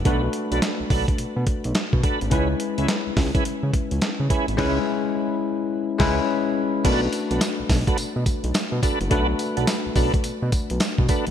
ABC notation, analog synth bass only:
X:1
M:4/4
L:1/16
Q:"Swing 16ths" 1/4=106
K:Bdor
V:1 name="Analog synth bass" clef=bass
B,,,2 z B,,, z B,,, B,,, z B,, B,, z B,,, z B,, z G,,, | C,,2 z C,, z C,, C,, z C, C, z C,, z C, z G,,, | C,,2 z8 C,,2 z4 | B,,,2 z B,,, z B,,, B,,, z B,, B,, z B,,, z B,, z F,,, |
B,,,2 z B,,, z B,,, B,,, z B,, B,, z B,,, z B,, z G,,, |]